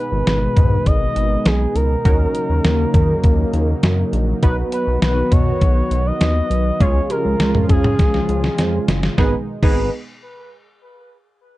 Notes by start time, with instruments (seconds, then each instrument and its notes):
Already playing: analog synth pad B2 D#3 G#3 D#4, analog polysynth B3 D#4 G#4 B4, analog synth lead B4
0.12 analog synth bass G#1
0.27 analog synth bass G#1, snare, closed hi-hat
0.56 analog synth bass G#2, kick, closed hi-hat, mid tom
0.86 analog synth bass G#1, analog synth lead D#5, kick, closed hi-hat
1.16 analog synth bass G#1, closed hi-hat
1.46 analog synth bass B1, analog synth lead G#4, snare, closed hi-hat
1.75 analog synth bass C#2, analog synth lead A#4, closed hi-hat
2.05 analog synth bass D#2, analog synth pad C#3 F#3 A#3, analog polysynth C#4 D#4 F#4 A#4, kick, closed hi-hat
2.35 closed hi-hat
2.50 analog synth bass D#2
2.65 analog synth bass D#2, snare, closed hi-hat
2.94 analog synth bass D#3, kick, closed hi-hat, mid tom
3.24 analog synth bass D#2, kick, closed hi-hat
3.54 analog synth bass D#2, closed hi-hat
3.83 analog synth bass F#2, snare, closed hi-hat
4.13 analog synth bass A#1, closed hi-hat
4.43 analog synth bass B1, analog synth pad D#3 B3 F#4, analog polysynth B3 D#4 F#4 B4, analog synth lead B4, kick, closed hi-hat
4.72 analog synth lead B4, closed hi-hat
4.87 analog synth bass B1
5.02 analog synth bass B1, analog synth lead B4, snare, closed hi-hat
5.32 analog synth bass B2, analog synth lead C#5, kick, closed hi-hat, mid tom
5.61 analog synth bass B1, kick, closed hi-hat
5.91 analog synth bass B1, closed hi-hat
6.06 analog synth lead D#5
6.21 analog synth bass D#2, snare, closed hi-hat
6.50 analog synth bass B1, closed hi-hat
6.80 analog synth bass C#2, analog synth pad C#3 F3 G#3 F4, analog polysynth G#3 C#4 F4 G#4, analog synth lead C#5, kick, closed hi-hat
7.10 analog synth lead A#4, closed hi-hat, cowbell
7.25 analog synth bass C#2
7.40 analog synth bass C#2, snare, closed hi-hat
7.55 mid tom
7.69 analog synth bass C#3, analog synth lead G#4, kick, closed hi-hat, mid tom
7.84 mid tom
7.99 analog synth bass C#2, kick, snare, closed hi-hat
8.14 snare
8.29 analog synth bass C#2, closed hi-hat
8.44 snare
8.58 analog synth bass F2, snare, closed hi-hat
8.88 analog synth bass F#1, snare, closed hi-hat
9.03 snare
9.18 analog synth bass G#1, analog synth pad B2 D#3 G#3 D#4, analog polysynth B3 D#4 G#4, analog synth lead B4, kick, snare
9.63 analog synth bass G#1, analog polysynth B3 D#4 G#4, analog synth lead B4, kick, crash